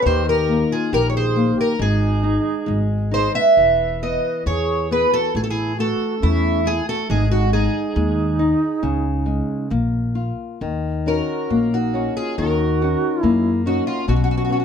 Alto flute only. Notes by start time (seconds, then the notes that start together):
0.01 A4
0.05 G4
0.27 G4
0.70 F4
0.93 G4
1.06 A#4
1.13 G#4
1.55 G4
1.78 D#4
3.11 G#4
3.33 B4
4.01 B4
4.47 G#4
4.90 G#4
5.11 F#4
5.34 E4
5.41 F#4
5.48 E4
5.77 F#4
6.19 C#4
6.66 E4
6.87 F#4
7.08 D#4
7.30 D#4
7.49 D#4
11.07 F#4
11.72 D#4
12.16 F4
12.38 F#4
13.22 E4
13.66 D#4
13.87 C#4
14.08 C#4